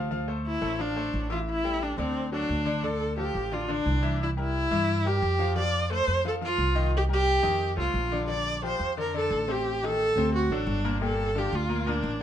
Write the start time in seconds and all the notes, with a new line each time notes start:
Already playing: D2
0.11 F3 F4 F5
0.28 A3 A4 C5
0.47 E4
0.62 A1 A3 A4 C5
0.79 F3 D4 F4 F5
0.96 A3 A4 C5
1.13 A1
1.30 E3 E4 F4 E5
1.50 E4
1.64 G3 G4 A4
1.83 D4
1.98 D2 D3 C4 D4 D5
2.32 F#3 D4 F#4 A4
2.49 D2
2.65 D3 D4 D5
2.83 D3 D4 A4 D5
3.17 F3 F4 G4 A4
3.35 A1
3.51 D3 D4 F4 D5
3.68 D3 D4 D5
3.86 C2
4.02 E3 E4 E5
4.23 E4
4.37 G3 E4 G4 A#4
4.71 G2 E3 E4 E5
5.05 G3 G4 A#4
5.22 F2
5.39 F3 F4 F5
5.56 F3 F4 D5 F5
5.91 A3 A4 C5
6.07 F2
6.25 F3 F4 A4 F5
6.41 F3 F4 F5
6.58 C2
6.75 D#3 D#4 D#5
6.97 G4
7.09 G3 G4 A#4
7.43 F2 D#3 D#4 D#5
7.77 C2 A3 F4 A4 C5
7.94 A#1
8.12 D3 D4 D5
8.29 D3 D4 D5
8.63 F3 F4 G4 C5
8.79 F2
8.97 D3 D4 A#4 D5
9.14 D3 D4 A4 D5
9.30 A1
9.48 C3 C4 G4 C5
9.83 D#3 D#4 G4 A4
10.16 D2 C3 C4 C5
10.36 F#4
10.50 A1 F#3 D4 F#4 A4
10.67 G1
10.84 A#2 A#3 A#4
11.01 A#2 A#3 G4 A4
11.35 D3 D4 F4 G4
11.53 D2 F4
11.69 A#2 A#3 A#4
11.87 A#2 A#3 D4 A#4
12.03 A1